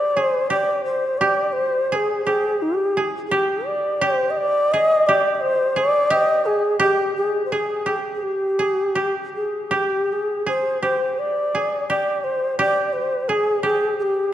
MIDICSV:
0, 0, Header, 1, 3, 480
1, 0, Start_track
1, 0, Tempo, 705053
1, 821, Time_signature, 4, 2, 24, 8
1, 2747, Tempo, 691244
1, 4667, Tempo, 715990
1, 5627, Tempo, 738007
1, 7547, Tempo, 698487
1, 9711, End_track
2, 0, Start_track
2, 0, Title_t, "Shakuhachi"
2, 0, Program_c, 0, 77
2, 0, Note_on_c, 0, 74, 77
2, 168, Note_off_c, 0, 74, 0
2, 168, Note_on_c, 0, 72, 77
2, 342, Note_off_c, 0, 72, 0
2, 345, Note_on_c, 0, 74, 80
2, 567, Note_off_c, 0, 74, 0
2, 578, Note_on_c, 0, 72, 67
2, 804, Note_on_c, 0, 74, 77
2, 814, Note_off_c, 0, 72, 0
2, 1040, Note_on_c, 0, 72, 76
2, 1050, Note_off_c, 0, 74, 0
2, 1306, Note_off_c, 0, 72, 0
2, 1306, Note_on_c, 0, 72, 63
2, 1334, Note_on_c, 0, 68, 69
2, 1340, Note_off_c, 0, 72, 0
2, 1524, Note_off_c, 0, 68, 0
2, 1529, Note_on_c, 0, 68, 75
2, 1784, Note_on_c, 0, 67, 73
2, 1794, Note_off_c, 0, 68, 0
2, 2087, Note_off_c, 0, 67, 0
2, 2225, Note_on_c, 0, 68, 54
2, 2257, Note_on_c, 0, 67, 75
2, 2267, Note_off_c, 0, 68, 0
2, 2490, Note_on_c, 0, 74, 74
2, 2500, Note_off_c, 0, 67, 0
2, 2742, Note_on_c, 0, 72, 86
2, 2753, Note_off_c, 0, 74, 0
2, 2932, Note_on_c, 0, 75, 67
2, 2943, Note_off_c, 0, 72, 0
2, 2982, Note_on_c, 0, 74, 87
2, 2992, Note_off_c, 0, 75, 0
2, 3223, Note_on_c, 0, 75, 101
2, 3234, Note_off_c, 0, 74, 0
2, 3464, Note_on_c, 0, 74, 88
2, 3475, Note_off_c, 0, 75, 0
2, 3663, Note_off_c, 0, 74, 0
2, 3663, Note_on_c, 0, 74, 60
2, 3702, Note_on_c, 0, 72, 89
2, 3713, Note_off_c, 0, 74, 0
2, 3950, Note_on_c, 0, 74, 94
2, 3960, Note_off_c, 0, 72, 0
2, 4188, Note_on_c, 0, 75, 96
2, 4199, Note_off_c, 0, 74, 0
2, 4428, Note_on_c, 0, 68, 79
2, 4438, Note_off_c, 0, 75, 0
2, 4666, Note_off_c, 0, 68, 0
2, 4670, Note_on_c, 0, 67, 80
2, 4892, Note_off_c, 0, 67, 0
2, 4908, Note_on_c, 0, 68, 72
2, 5087, Note_off_c, 0, 68, 0
2, 5106, Note_on_c, 0, 72, 55
2, 5153, Note_on_c, 0, 68, 75
2, 5163, Note_off_c, 0, 72, 0
2, 5450, Note_off_c, 0, 68, 0
2, 5569, Note_on_c, 0, 68, 49
2, 5626, Note_on_c, 0, 67, 69
2, 5636, Note_off_c, 0, 68, 0
2, 6215, Note_off_c, 0, 67, 0
2, 6359, Note_on_c, 0, 68, 53
2, 6561, Note_off_c, 0, 68, 0
2, 6561, Note_on_c, 0, 68, 43
2, 6599, Note_on_c, 0, 67, 70
2, 6609, Note_off_c, 0, 68, 0
2, 6858, Note_on_c, 0, 68, 61
2, 6868, Note_off_c, 0, 67, 0
2, 7084, Note_off_c, 0, 68, 0
2, 7088, Note_on_c, 0, 72, 70
2, 7303, Note_off_c, 0, 72, 0
2, 7315, Note_on_c, 0, 72, 66
2, 7551, Note_on_c, 0, 74, 77
2, 7561, Note_off_c, 0, 72, 0
2, 8028, Note_off_c, 0, 74, 0
2, 8032, Note_on_c, 0, 74, 72
2, 8273, Note_on_c, 0, 72, 63
2, 8283, Note_off_c, 0, 74, 0
2, 8511, Note_off_c, 0, 72, 0
2, 8515, Note_on_c, 0, 74, 75
2, 8745, Note_on_c, 0, 72, 70
2, 8756, Note_off_c, 0, 74, 0
2, 8934, Note_off_c, 0, 72, 0
2, 8934, Note_on_c, 0, 72, 52
2, 8998, Note_on_c, 0, 68, 73
2, 9008, Note_off_c, 0, 72, 0
2, 9228, Note_off_c, 0, 68, 0
2, 9232, Note_on_c, 0, 68, 71
2, 9454, Note_off_c, 0, 68, 0
2, 9477, Note_on_c, 0, 68, 68
2, 9499, Note_on_c, 0, 67, 74
2, 9506, Note_off_c, 0, 68, 0
2, 9711, Note_off_c, 0, 67, 0
2, 9711, End_track
3, 0, Start_track
3, 0, Title_t, "Koto"
3, 0, Program_c, 1, 107
3, 0, Note_on_c, 1, 62, 48
3, 0, Note_on_c, 1, 67, 57
3, 113, Note_on_c, 1, 68, 54
3, 154, Note_off_c, 1, 67, 0
3, 258, Note_off_c, 1, 62, 0
3, 341, Note_on_c, 1, 67, 64
3, 382, Note_off_c, 1, 68, 0
3, 821, Note_off_c, 1, 67, 0
3, 823, Note_on_c, 1, 67, 75
3, 1308, Note_on_c, 1, 68, 63
3, 1348, Note_off_c, 1, 67, 0
3, 1542, Note_on_c, 1, 67, 58
3, 1583, Note_off_c, 1, 68, 0
3, 2022, Note_on_c, 1, 68, 57
3, 2063, Note_off_c, 1, 67, 0
3, 2256, Note_on_c, 1, 67, 73
3, 2297, Note_off_c, 1, 68, 0
3, 2730, Note_off_c, 1, 67, 0
3, 2733, Note_on_c, 1, 67, 85
3, 3233, Note_on_c, 1, 68, 69
3, 3275, Note_off_c, 1, 67, 0
3, 3476, Note_on_c, 1, 67, 69
3, 3518, Note_off_c, 1, 68, 0
3, 3946, Note_on_c, 1, 68, 65
3, 3988, Note_off_c, 1, 67, 0
3, 4183, Note_on_c, 1, 67, 77
3, 4225, Note_off_c, 1, 68, 0
3, 4661, Note_off_c, 1, 67, 0
3, 4664, Note_on_c, 1, 67, 82
3, 5150, Note_on_c, 1, 68, 62
3, 5190, Note_off_c, 1, 67, 0
3, 5377, Note_on_c, 1, 67, 56
3, 5418, Note_off_c, 1, 68, 0
3, 5860, Note_on_c, 1, 68, 54
3, 5899, Note_off_c, 1, 67, 0
3, 6097, Note_on_c, 1, 67, 59
3, 6136, Note_off_c, 1, 68, 0
3, 6585, Note_off_c, 1, 67, 0
3, 6588, Note_on_c, 1, 67, 67
3, 7079, Note_on_c, 1, 68, 56
3, 7118, Note_off_c, 1, 67, 0
3, 7314, Note_on_c, 1, 67, 53
3, 7353, Note_off_c, 1, 68, 0
3, 7796, Note_on_c, 1, 68, 57
3, 7838, Note_off_c, 1, 67, 0
3, 8037, Note_on_c, 1, 67, 64
3, 8078, Note_off_c, 1, 68, 0
3, 8510, Note_off_c, 1, 67, 0
3, 8512, Note_on_c, 1, 67, 78
3, 8995, Note_on_c, 1, 68, 63
3, 9036, Note_off_c, 1, 67, 0
3, 9229, Note_on_c, 1, 67, 62
3, 9270, Note_off_c, 1, 68, 0
3, 9711, Note_off_c, 1, 67, 0
3, 9711, End_track
0, 0, End_of_file